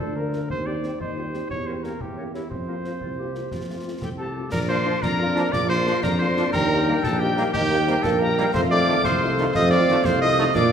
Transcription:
0.00 D2 D4 A4
0.15 F3 A#3 F4 A#4
0.32 F3 A#3 F4 A#4, snare
0.50 D#2 C4 C5, concert bass drum
0.66 G3 C4 G4 C5 D5
0.82 G3 C4 G4 C5, snare
1.00 D#2 D#4 C5, concert bass drum
1.15 G3 C4 F4 G4 C5
1.33 G3 C4 G4 C5, snare
1.50 E2 C#5, concert bass drum
1.66 A#3 C#4 G4 A#4 C5 C#5
1.83 A#3 C#4 G4 A#4 C#5, snare
2.00 E2 E4 G4, concert bass drum
2.18 A#3 C#4 G4 A#4 C#5
2.34 A#3 C#4 E4 G4 A#4 C#5, snare
2.50 F2 C4 C5, concert bass drum
2.68 A#3 C4 F4 A#4 C5
2.84 A#3 C4 F4 A#4 C5, snare
3.01 C2 F4, concert bass drum
3.18 A#3 C4 F4 G4
3.35 A#3 C4 F4, snare
3.51 F2 F4, concert bass drum, snare
3.69 A3 C4 F4
3.85 A3 C4 F4
4.01 C2 G4 A4 G5, concert bass drum, snare
4.17 A3 C4 F4 G4 A4 A5
4.36 A3 C4 F4
4.52 A#1 A#4 D5 A#5, concert bass drum, snare, crash
4.69 A#3 D4 F4 C5 C6
4.85 F3 A#3 D4 F4
5.02 F2 D4 A#4 D5 A#5, concert bass drum, snare
5.19 A#3 D4 F4
5.35 F3 A#3 D4 F4, snare
5.52 A#1 F4 A#4 D5 D6, concert bass drum, snare
5.69 A#3 D4 F4 C5 C6, snare
5.87 F3 A#3 D4 F4, snare
6.03 F2 D4 A#4 D5 A#5, concert bass drum, snare
6.19 A#3 D4 F4 C5 C6
6.37 F3 A#3 D4 F4, snare
6.53 D#2 A#4 G5 A#5, concert bass drum, snare, crash
6.70 A#3 D#4 G4
6.87 G3 A#3 D#4 G4
7.03 A#1 A4 A5, concert bass drum, snare
7.19 A#3 D#4 G4 G5
7.37 G3 A#3 D#4 G4, snare
7.53 D#2 D#4 G4 A#4 G5, concert bass drum, snare
7.70 A#3 D#4 G4, snare
7.87 G3 A#3 C4 D#4 G4, snare
8.02 A#1 A#3 A4 A5, concert bass drum, snare
8.19 A#3 D#4 G4 A#4 A#5
8.37 G3 A#3 D#4 G4, snare
8.54 F2 A3 A4 C5 F5 C6, concert bass drum, snare, crash
8.71 A3 D#4 F4 D5 D6
8.87 D#3 A3 D#4 F4
9.04 C2 A4 C5 F5 C6, concert bass drum, snare
9.22 A3 D#4 F4
9.38 D#3 A3 D#4 F4, snare
9.54 F2 C4 A4 D#5 F5 D#6, concert bass drum, snare
9.71 A3 D#4 F4 D5 D6, snare
9.88 D#3 A3 D#4 F4, snare
10.04 C2 A4 C5 F5 C6, concert bass drum, snare
10.21 A3 D#4 F4 D#5 D#6
10.38 D#3 A3 D#4 F4, snare
10.54 A#2 D4 A#4 D5 F5 D6, concert bass drum, snare, crash

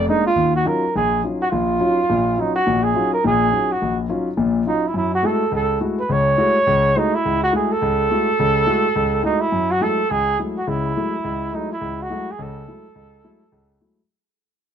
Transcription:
0.09 G#3 A#3 D4 D#4
0.27 F4
0.36 D#2 D#3
0.55 F#4
0.65 F#3 C#4 D#4 F4 A#4
0.96 A#1 G#4
1.23 F#3 C#4 D#4 F4
1.42 F#4
1.51 A#1 F4
1.80 F#3 C#4 D#4 F4
2.09 A#1 A#2
2.37 F#3 C#4 D#4 F4
2.55 F#4
2.66 A#1 A#2
2.83 G#4
2.95 F#3 C#4 D#4 F4
3.13 A#4
3.24 A#1 A#2 G#4
3.52 F#3 C#4 D#4 F4
3.72 F#4
3.82 A#1
4.09 F#3 C#4 D#4 F4
4.37 A#1 A#2
4.66 F#3 C#4 D#4 F4
4.87 E4
4.94 F#2 E4
5.15 F#4
5.22 G#3 A3 E4 F#4 A4
5.52 C#2 A4
5.80 G#3 A3 E4 F#4
6.00 B4
6.09 C#2 C#3 C#5
6.38 G#3 A3 E4 F#4
6.67 C#2 C#3
6.95 G#3 A3 D#4 E4 F#4
7.14 E4
7.25 C#2
7.43 F#4
7.52 G#3 A3 E4 F#4 G#4
7.72 A4
7.82 C#2
8.10 G#3 A3 E4 F#4
8.39 C#2 C#3
8.66 G#3 A3 E4 F#4
8.96 C#2
9.23 G#3 A3 D#4 E4 F#4
9.41 E4
9.52 F#2
9.71 F#4
9.80 F#3 G#3 A3 E4 A4
10.10 C#2 G#4
10.38 F#3 G#3 A3 E4
10.58 F#4
10.67 C#2 C#3 E4
10.97 F#3 G#3 A3 E4
11.24 C#2
11.52 F#3 G#3 A3 D#4 E4
11.73 E4
11.81 C#2
12.02 F#4
12.09 F#3 G#3 A3 E4
12.31 G#4
12.39 C#2 C#3 A4
12.68 F#3 G#3 A3 E4
12.95 C#2
13.24 F#3 G#3 A3 E4
13.52 C#2
13.80 F#3 G#3 A3 E4

